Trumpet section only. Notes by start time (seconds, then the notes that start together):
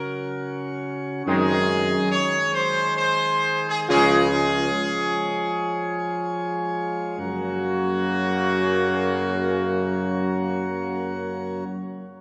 Already playing: A#4
1.27 G#4
2.11 C#5
2.54 C5
2.97 C5
3.68 G#4
3.90 G#4
7.19 F#4